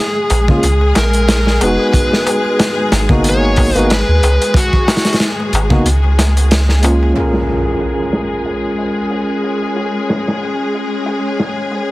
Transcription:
Already playing: G#3 G#4
0.30 A#1, closed hi-hat, darbuka tek
0.48 G#3 A#3 C#4 F4, kick, darbuka tek, darbuka dum
0.63 C#2, closed hi-hat, darbuka tek
0.81 darbuka tek
0.95 A#1 A#4, snare, closed hi-hat, darbuka tek
1.13 closed hi-hat, darbuka tek
1.28 snare, closed hi-hat, darbuka tek
1.46 snare, darbuka tek
1.59 F1 G#3 B3, closed hi-hat, darbuka tek
1.63 D#4 F#4 B4
1.80 darbuka tek
1.93 kick, closed hi-hat, darbuka tek
2.12 snare, darbuka tek
2.27 closed hi-hat, darbuka tek
2.45 darbuka tek
2.59 snare, closed hi-hat, darbuka tek
2.92 G#1, snare, closed hi-hat, darbuka tek
3.09 A#3 B3 D#4 F#4, kick, darbuka tek, darbuka dum
3.24 closed hi-hat, darbuka tek
3.29 C#5
3.43 darbuka tek
3.56 kick, open hi-hat, darbuka tek
3.75 G#1 A#3 B3 D#4 F#4 B4, closed hi-hat, darbuka tek
3.90 B4, snare, closed hi-hat, darbuka tek
4.08 D#2
4.23 C#2, closed hi-hat, darbuka tek
4.42 closed hi-hat, darbuka tek
4.54 F#4, kick, closed hi-hat, darbuka tek
4.73 kick, darbuka tek
4.88 snare, closed hi-hat, darbuka tek
4.97 snare, closed hi-hat
5.05 snare, closed hi-hat, darbuka tek
5.13 snare, closed hi-hat
5.20 snare, closed hi-hat, darbuka tek
5.40 darbuka tek
5.53 G#1, closed hi-hat, darbuka tek
5.70 A#3 B3 D#4 F#4, kick, darbuka tek, darbuka dum
5.85 C#2, closed hi-hat, darbuka tek
6.04 darbuka tek
6.19 snare, closed hi-hat, darbuka tek
6.37 closed hi-hat, darbuka tek
6.51 snare, closed hi-hat, darbuka tek
6.69 snare, darbuka tek
6.82 G#3 A#3 C#4 F4, closed hi-hat, darbuka tek
7.03 darbuka tek
7.14 G#3 C#4 F4 G#4, closed hi-hat, impact
7.20 A#4
7.34 snare
7.48 closed hi-hat
7.80 closed hi-hat
8.12 snare, closed hi-hat
8.45 closed hi-hat
8.78 open hi-hat
8.97 closed hi-hat
9.10 closed hi-hat
9.44 closed hi-hat
9.62 closed hi-hat
9.76 closed hi-hat
10.09 snare, closed hi-hat
10.28 snare
10.42 closed hi-hat
10.74 closed hi-hat
11.06 closed hi-hat
11.39 snare, closed hi-hat
11.57 closed hi-hat
11.72 closed hi-hat

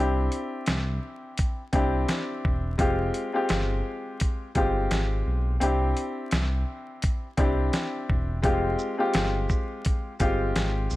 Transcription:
Already playing: C2 C4 D4 E4 G4
0.32 closed hi-hat
0.66 C2, snare, closed hi-hat
1.38 kick, closed hi-hat
1.73 C2 C4 D4 E4 G4, kick, closed hi-hat
2.08 snare, closed hi-hat
2.45 E1, kick
2.78 F1 G#3 C4 F4 G4, kick, closed hi-hat
3.14 closed hi-hat
3.33 G#3 C4 F4 G4
3.49 G1, snare, closed hi-hat
4.20 kick, closed hi-hat
4.55 G1 G#3 C4 F4 G4, kick, closed hi-hat
4.91 G#1, snare, closed hi-hat
5.27 B1
5.60 C2 C4 D4 E4 G4, closed hi-hat
5.97 closed hi-hat
6.31 C2, snare, closed hi-hat
7.02 kick, closed hi-hat
7.37 C2 C4 D4 E4 G4, kick, closed hi-hat
7.73 snare, closed hi-hat
8.10 E1, kick
8.42 F1 G#3 C4 F4 G4, kick, closed hi-hat
8.79 shaker
8.98 G#3 C4 F4 G4
9.14 G1, snare, closed hi-hat
9.49 kick, shaker
9.85 kick, closed hi-hat
10.19 G1 G#3 C4 F4 G4, kick, closed hi-hat, shaker
10.56 G#1, snare, closed hi-hat
10.90 B1, shaker

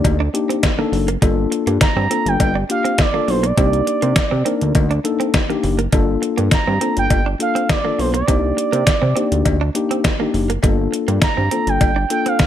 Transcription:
Already playing: A#3 D4 D#4 G4 D5
0.04 D2, kick, closed hi-hat, cowbell
0.20 D4
0.33 A#3 D4 D#4 G4, muted clean electric guitar stroke, closed hi-hat
0.49 C4, closed hi-hat
0.63 kick, snare, closed hi-hat, cowbell
0.78 A#3 D4 D#4 A4
0.92 F#1, muted clean electric guitar stroke, open hi-hat
1.08 A#3, closed hi-hat
1.22 G1 G3 A#3 D4 F4 A4, kick, closed hi-hat, cowbell
1.52 muted clean electric guitar stroke, closed hi-hat
1.67 G2 A#3, closed hi-hat
1.81 G2 A#5, muted clean electric guitar stroke, kick, snare, closed hi-hat, cowbell
1.96 G2 C4
2.10 A#3 C4 D4 F4 A4, closed hi-hat
2.26 G1 G5, closed hi-hat
2.40 G1 G5, kick, closed hi-hat, cowbell
2.55 D4
2.69 A#3 D4 F4 G4 F5, muted clean electric guitar stroke, closed hi-hat
2.84 C4, closed hi-hat
2.98 D5, kick, snare, closed hi-hat, cowbell
3.14 A#3 D4 F4 A4
3.28 B1 C5, muted clean electric guitar stroke, open hi-hat
3.43 A#3 D5, closed hi-hat
3.57 C2 A#3 C4 D4 D#4 G4, kick, closed hi-hat, cowbell
3.73 closed hi-hat
3.87 muted clean electric guitar stroke, closed hi-hat
4.02 C3 A#3, closed hi-hat
4.16 C3, muted clean electric guitar stroke, kick, snare, closed hi-hat, cowbell
4.31 C3 C4
4.45 A#3 C4 D4 D#4 A#4, closed hi-hat
4.61 D2, closed hi-hat
4.75 D2, kick, closed hi-hat, cowbell
4.91 D4, closed hi-hat
5.04 A#3 D4 D#4 A4, muted clean electric guitar stroke, closed hi-hat
5.20 C4, closed hi-hat
5.34 kick, snare, closed hi-hat, cowbell
5.50 A#3 D4 D#4 G4, closed hi-hat
5.63 F#1, muted clean electric guitar stroke, open hi-hat
5.79 A#3, closed hi-hat
5.92 G1 G3 A#3 D4 F4 A4, kick, closed hi-hat, cowbell
6.22 muted clean electric guitar stroke, closed hi-hat
6.38 G2 A#3, closed hi-hat
6.51 G2 A#5, muted clean electric guitar stroke, kick, snare, closed hi-hat, cowbell
6.67 G2 C4
6.81 A#3 C4 D4 F4 A4, closed hi-hat
6.97 G1 G5, closed hi-hat
7.10 G1 G5, kick, closed hi-hat, cowbell
7.26 D4
7.39 A#3 D4 F4 A4 F5, muted clean electric guitar stroke, closed hi-hat
7.55 C4, closed hi-hat
7.69 D5, kick, snare, closed hi-hat, cowbell
7.85 A#3 D4 F4 A4
7.99 B1 C5, muted clean electric guitar stroke, open hi-hat
8.14 A#3 D5, closed hi-hat
8.27 C2 A#3 C4 D4 D#4 G4, kick, closed hi-hat, cowbell
8.57 muted clean electric guitar stroke, closed hi-hat
8.72 C3 A#3, closed hi-hat
8.86 C3, muted clean electric guitar stroke, kick, snare, closed hi-hat, cowbell
9.02 C3 C4
9.16 A#3 C4 D4 D#4 G4, closed hi-hat
9.32 D2, closed hi-hat
9.45 D2, kick, closed hi-hat, cowbell
9.61 D4
9.75 A#3 D4 D#4 G4, muted clean electric guitar stroke, closed hi-hat
9.91 C4, closed hi-hat
10.04 kick, snare, closed hi-hat, cowbell
10.20 A#3 D4 D#4 G4
10.34 F#1, muted clean electric guitar stroke, open hi-hat
10.50 A#3, closed hi-hat
10.63 G1 G3 A#3 D4 F4 A4, kick, closed hi-hat, cowbell
10.92 muted clean electric guitar stroke, closed hi-hat
11.08 G2 A#3, closed hi-hat
11.21 G2 A#5, muted clean electric guitar stroke, kick, snare, closed hi-hat, cowbell
11.37 G2 C4
11.51 A#3 C4 D4 F4 A4, closed hi-hat
11.67 G1 G5, closed hi-hat
11.81 G1, kick, closed hi-hat, cowbell
11.96 D4
12.10 A#3 D4 F4 A4 G5, muted clean electric guitar stroke, closed hi-hat
12.26 C4 F5, closed hi-hat
12.39 kick, snare, closed hi-hat, cowbell

